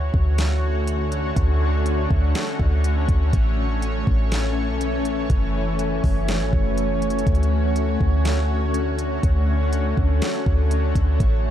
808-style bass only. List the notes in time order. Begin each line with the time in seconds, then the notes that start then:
Already playing: D2
0.14 D2
1.37 D2
2.11 D2
2.60 D2
3.09 D2
3.33 A1
4.07 A1
4.68 B1
4.99 A1
5.30 F#1
6.04 F#1
6.41 A1
6.53 F#1
7.27 D2
8.01 D2
9.23 D2
9.97 D2
10.46 D2
10.95 D2
11.20 A1